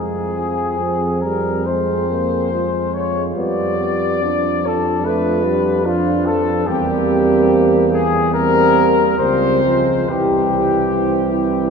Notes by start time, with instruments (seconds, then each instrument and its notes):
Already playing: tuba F2, trombone G#3, euphonium C4, french horn section F4, trumpet section G#4
0.36 trombone F3
0.79 trombone F3, french horn section G#4
1.22 trombone G3, trumpet section A#4
1.65 trombone G#3, euphonium C4, french horn section G#4, trumpet section C5
2.10 trombone A#3
2.52 euphonium G#3, trombone G#3, french horn section F4
2.94 trumpet section C#5
3.35 tuba F2, trombone G3, euphonium B3, trumpet section D5
3.80 euphonium B3
4.22 trombone F3, euphonium D4
4.65 euphonium D4, trumpet section A4
5.04 trombone A3, french horn section F4, trumpet section B4
5.45 trombone G3
5.85 trombone F3, euphonium D4, french horn section D4, trumpet section F4
6.26 trumpet section A4
6.67 tuba E2, trombone G3, euphonium A#3, french horn section C4, trumpet section G4
7.92 trumpet section G#4
8.33 trombone G3, euphonium A#3, french horn section C4, trumpet section A#4
9.17 tuba C#2, trombone G3, euphonium A#3, french horn section C4, trumpet section C5
9.62 trombone F3, euphonium G#3
10.08 tuba C2, trombone E3, euphonium G3, french horn section C4, trumpet section G4
11.04 euphonium G3